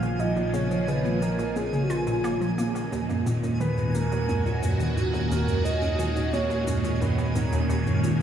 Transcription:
Already playing: A#1 A#2 D#3 F3 G#3 C#4 F5 G#5
0.03 D#3, shaker
0.19 A#2 D#5, shaker
0.36 A#2, shaker
0.53 C#3 C#5, high conga, shaker
0.70 F3, shaker
0.88 C#3 B4, shaker
1.05 A#3, shaker
1.22 D#3 A#4, shaker
1.39 A#2, shaker
1.56 A#2 G#4, high conga, shaker
1.73 C#3, shaker
1.83 F#4
1.90 F4, shaker
2.07 A#2, shaker
2.24 A#3, shaker
2.41 F3, shaker
2.58 A#3, high conga, shaker
2.75 D#3, shaker
2.92 D#2, shaker
3.09 F#2, shaker
3.19 G#3
3.25 A#2 C#4, high conga, shaker
3.43 F#2, shaker
3.50 F#4
3.60 D#3 B4, shaker
3.78 G#2, shaker
3.95 D#2 A#4, shaker
4.12 D#2, shaker
4.29 F#2, high conga, shaker
4.46 A#2, shaker
4.63 F#2, shaker
4.80 D#3, shaker
4.97 G#2, shaker
5.14 D#2, shaker
5.31 D#2 A#4, high conga, shaker
5.48 F#2, shaker
5.65 A#2 D#5, shaker
5.82 F#2, shaker
5.99 D#3, shaker
6.16 G#2, shaker
6.33 D#2 C#5, high conga, shaker
6.50 D#2, shaker
6.67 F#2, shaker
6.84 A#2, shaker
7.01 F#2 B4, shaker
7.18 D#3, shaker
7.35 G#2 A#4, high conga, shaker
7.53 D#2, shaker
7.70 D#2, shaker
7.87 F#2, shaker
8.03 A#2, shaker

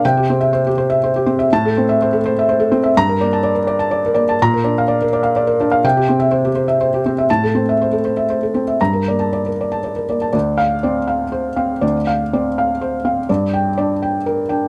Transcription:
0.05 C3 G5
0.17 G4
0.30 C4 C5
0.41 E5
0.53 C5
0.67 G4
0.78 C5
0.90 E5
1.04 C5
1.16 G4
1.26 C4 C5
1.39 E5
1.53 A2 A5
1.65 A4
1.77 C4 C5
1.89 E5
2.02 C5
2.13 A4
2.26 C5
2.39 E5
2.49 C5
2.60 A4
2.72 C4 C5
2.84 E5
2.97 G2 A#5
3.09 A#4
3.20 A#3 D5
3.33 A5
3.43 D5
3.55 A#4
3.67 D5
3.79 A5
3.91 D5
4.06 A#4
4.14 A#3 D5
4.29 A5
4.42 A#2 A#5
4.54 A#4
4.64 D4 D5
4.78 F5
4.88 D5
5.02 A#4
5.13 D5
5.23 F5
5.36 D5
5.47 A#4
5.60 D4 D5
5.71 F5
5.84 C3 G5
5.97 G4
6.08 C4 C5
6.20 E5
6.31 C5
6.45 G4
6.55 C5
6.68 E5
6.81 C5
6.94 G4
7.06 C4 C5
7.18 E5
7.30 A2 A5
7.44 A4
7.55 C4 C5
7.69 E5
7.82 C5
7.93 A4
8.05 C5
8.17 E5
8.30 C5
8.43 A4
8.54 C4 C5
8.68 E5
8.81 G2 A#5
8.93 A#4
9.08 A#3 D5
9.19 A5
9.33 D5
9.46 A#4
9.61 D5
9.72 A5
9.84 D5
9.96 A#4
10.09 A#3 D5
10.22 A5
10.33 D2 D5
10.58 F5
10.83 C4 D5
11.08 F5
11.32 C5
11.56 C4 F5
11.81 D2 D5
12.07 F5
12.33 C4 D5
12.58 F5
12.81 C5
13.05 C4 F5
13.29 G2 D5
13.54 G5
13.78 D4 D5
14.02 G5
14.26 A#4
14.49 D4 G5

